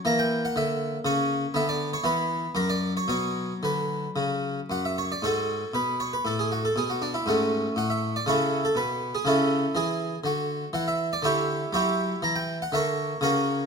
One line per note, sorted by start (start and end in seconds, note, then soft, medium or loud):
0.05 0.45 E3 medium
0.05 1.50 A#3 soft
0.05 0.18 A#5 loud
0.19 0.43 G5 loud
0.45 0.56 F#5 medium
0.56 0.95 D3 medium
0.56 0.98 E5 medium
1.05 1.44 C#3 medium
1.05 1.55 C#5 medium
1.54 1.94 D3 medium
1.54 2.00 B3 soft
1.54 1.68 E5 loud
1.69 1.89 D5 medium
1.93 2.05 C#5 medium
2.04 2.45 E3 medium
2.04 2.52 B3 soft
2.04 2.48 B4 medium
2.55 2.97 F#2 soft
2.55 3.04 F#3 soft
2.55 2.69 A#4 medium
2.70 2.92 D5 medium
2.97 3.08 C#5 medium
3.08 3.51 B2 medium
3.08 4.65 F#3 soft
3.08 3.55 C#5 medium
3.63 4.05 D3 soft
3.63 4.09 B4 medium
4.16 4.59 C#3 soft
4.70 5.11 F#2 soft
4.70 4.84 F#5 medium
4.85 4.97 E5 medium
4.98 5.10 C#5 medium
5.12 5.23 D5 medium
5.22 5.63 G#2 soft
5.22 5.71 F#4 soft
5.22 5.71 A4 medium
5.22 5.74 C#5 medium
5.74 6.14 B2 soft
5.74 5.99 B4 medium
6.00 6.12 C#5 medium
6.13 6.25 B4 medium
6.25 6.65 A2 soft
6.25 6.38 A4 medium
6.39 6.51 G#4 soft
6.52 6.63 F#4 medium
6.65 6.76 A4 medium
6.76 7.16 B2 soft
6.76 6.89 G#4 medium
6.90 7.01 F#4 medium
7.02 7.14 D4 medium
7.14 7.26 E4 medium
7.26 7.66 G#2 soft
7.26 7.74 A3 soft
7.26 7.74 C#4 soft
7.26 7.70 F#4 medium
7.76 8.17 A2 soft
7.76 7.90 F#5 medium
7.90 8.15 E5 medium
8.16 8.28 D5 medium
8.26 8.66 C#3 soft
8.26 8.63 E4 medium
8.26 8.63 A4 medium
8.26 8.65 C#5 medium
8.65 8.77 A4 medium
8.75 9.15 B2 soft
8.75 9.13 B4 medium
9.15 9.26 G#4 medium
9.25 9.65 C#3 soft
9.25 9.73 C#4 medium
9.25 9.73 E4 medium
9.25 9.75 A4 medium
9.75 10.14 E3 soft
9.75 10.18 G#4 medium
10.24 10.64 D3 soft
10.24 10.67 F#4 medium
10.73 11.13 E3 medium
10.73 10.86 F#5 medium
10.88 11.11 E5 medium
11.13 11.24 D5 medium
11.22 11.62 D3 medium
11.22 11.70 E4 medium
11.22 11.70 G4 medium
11.22 11.66 C#5 medium
11.73 12.12 F#3 medium
11.73 12.20 E4 medium
11.73 12.20 G4 medium
11.73 12.16 C#5 medium
12.22 12.62 E3 medium
12.22 12.35 A#5 loud
12.36 12.56 G5 medium
12.62 12.73 F#5 medium
12.72 13.12 D3 medium
12.72 13.20 A#4 medium
12.72 13.20 C#5 medium
12.72 13.15 E5 medium
13.21 13.61 C#3 medium
13.21 13.66 F#4 medium
13.21 13.66 A#4 medium
13.21 13.66 C#5 medium